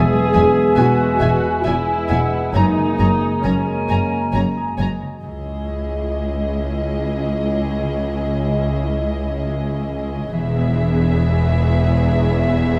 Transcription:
Already playing: harp E2, french horn section G#3 B3, viola section G#4, clarinet E5, flute section G#5
0.15 harp B2
0.33 double bass section E1, cello section E2, harp G#3, violin section E5 G#5
0.56 harp G#4
0.75 double bass section E1, cello section E2, viola section F#4, harp B4, violin section E5 G#5
0.99 harp G#4
1.20 double bass section E1, cello section E2, violin section E5 G#5, harp G#5
1.44 harp B5
1.63 double bass section E1, cello section E2, french horn section G#3 B3, viola section E4, violin section E5 G#5, clarinet E5, harp G#5, flute section G#5
1.88 harp G#4
2.09 double bass section E1, cello section E2, harp G#3, violin section E5 G#5, clarinet F#5
2.33 harp B2
2.54 double bass section F#1, harp F#2, cello section F#2, french horn section G#3 A#3, viola section D#4, violin section C#5 G#5 A#5, clarinet G#5, flute section A#5
2.77 harp C#3
2.98 double bass section F#1, cello section F#2, harp G#3, violin section C#5 G#5 A#5
3.22 harp G#4
3.43 double bass section F#1, cello section F#2, french horn section G#3 A#3, viola section C#4, harp A#4, violin section C#5 G#5 A#5, clarinet G#5, flute section A#5
3.67 harp G#4
3.88 double bass section F#1, cello section F#2, violin section C#5 G#5 A#5, harp G#5
4.12 harp A#5
4.33 double bass section F#1, cello section F#2, violin section C#5 G#5 A#5, harp G#5
4.57 harp G#4
4.78 double bass section F#1, cello section F#2, harp G#3, violin section C#5 G#5 A#5
5.02 harp C#3
5.23 double bass section C#2, cello section C#2, harp C#3, viola section C#4 E4, violin section G#4 D#5
5.45 harp C#4
5.67 harp G#3
5.89 harp E4
6.11 harp D#5
6.33 harp E4
6.54 harp D#5
6.76 harp E4
6.97 harp G#3
7.18 harp C#4
7.40 harp G#3
7.61 harp C#4
7.82 harp C#3
8.03 harp G#3
8.24 harp C#4
8.45 harp E4
8.65 harp D#5
8.86 harp E4
9.07 harp D#5
9.28 harp E4
9.49 harp G#3
9.71 harp C#4
9.91 harp G#3
10.13 harp C#4
10.33 double bass section E1, cello section E2, harp E3, viola section B3 E4, violin section G#4 E5
10.54 harp G#3
10.76 harp E4
10.96 harp B4
11.18 harp G#4
11.39 harp B4
11.61 harp G#4
11.81 harp B4
12.03 harp E4
12.25 harp G#3
12.47 harp E4
12.69 harp G#3

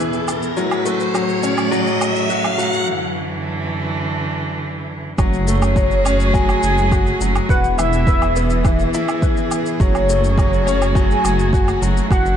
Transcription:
Already playing: string quartet E2 B2 G#4, upright piano B3 E4 B4, riser
0.00 upright piano E3
0.13 shaker
0.28 low woodblock, shaker
0.43 shaker
0.57 string quartet A2 F#3, upright piano F#3, shaker
0.71 low woodblock, shaker
0.85 upright piano A3, shaker
1.00 shaker
1.14 upright piano F#3, low woodblock, shaker
1.29 shaker
1.43 upright piano C#4, shaker
1.58 low woodblock, shaker
1.71 upright piano F#3, shaker
1.87 shaker
2.01 low woodblock, shaker
2.16 shaker
2.29 upright piano F#4, shaker
2.44 low woodblock, shaker
2.58 upright piano F#3, shaker
2.73 shaker
2.88 string quartet F#2 D3 E3
5.18 detuned saw bass F#1, upright piano F#3, string quartet A3 F#4 G#4, soft synth lead C#5, kick, low woodblock, shaker
5.33 shaker
5.47 upright piano A3, shaker
5.62 low woodblock, shaker
5.76 upright piano F#3, kick, shaker
5.91 shaker
6.05 upright piano C#4, low woodblock, shaker
6.20 shaker
6.34 upright piano F#3, soft synth lead G#5, kick, shaker
6.49 low woodblock, shaker
6.63 detuned saw bass F#1, shaker
6.78 shaker
6.92 upright piano F#4, kick, low woodblock, shaker
7.07 shaker
7.21 detuned saw bass F#1, upright piano F#3, shaker
7.36 low woodblock, shaker
7.49 detuned saw bass E1, string quartet E3 B3 G#4, upright piano B4, soft synth lead F#5, kick, shaker
7.64 shaker
7.78 upright piano E3, soft synth lead E5, low woodblock, shaker
7.93 shaker
8.07 upright piano B4, kick, shaker
8.22 low woodblock, shaker
8.36 upright piano B3, shaker
8.50 shaker
8.65 upright piano E3, kick, low woodblock, shaker
8.79 shaker
8.94 upright piano E4, shaker
9.08 low woodblock, shaker
9.22 upright piano E3, kick, shaker
9.37 shaker
9.51 low woodblock, shaker
9.66 shaker
9.80 detuned saw bass F#1, upright piano F#3, string quartet A3 F#4, soft synth lead C#5, kick, shaker
9.95 low woodblock, shaker
10.09 upright piano A3, shaker
10.24 shaker
10.38 upright piano F#3, kick, low woodblock, shaker
10.53 shaker
10.67 upright piano C#4, shaker
10.82 low woodblock, shaker
10.95 upright piano F#3, soft synth lead G#5, kick, shaker
11.11 shaker
11.24 detuned saw bass F#1, low woodblock, shaker
11.39 shaker
11.53 upright piano F#4, kick, shaker
11.68 low woodblock, shaker
11.82 detuned saw bass F#1, upright piano F#3, shaker
11.97 shaker
12.11 detuned saw bass F#1, string quartet F#3 D4 E4, upright piano F#4, soft synth lead F#5, kick, low woodblock, shaker
12.26 shaker

